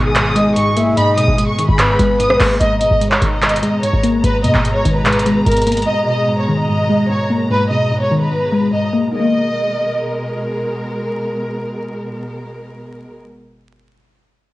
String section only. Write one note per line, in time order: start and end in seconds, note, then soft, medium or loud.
0.00 2.57 B2 medium
0.00 2.57 G#3 medium
0.00 2.57 G#4 medium
2.60 9.10 B2 medium
2.60 9.10 G#3 medium
2.60 9.10 A#5 medium
9.14 13.16 B2 medium
9.14 13.16 G#3 medium
9.14 13.16 A#4 medium